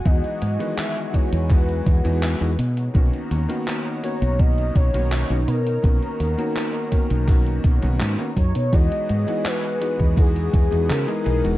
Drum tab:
HH |xxxxxxxxxxxxxxxx|xxxxxxxxxxxxxxxx|xxxxxxxxxxxxxxxx|xxxxxxx-xxxxxxxx|
CP |----x---x---x---|----x-------x---|----x---x---x---|----x-------x---|
BD |o-----o-o-o-----|o-------o-o-----|o-----o-o-o---o-|o------oo-o-----|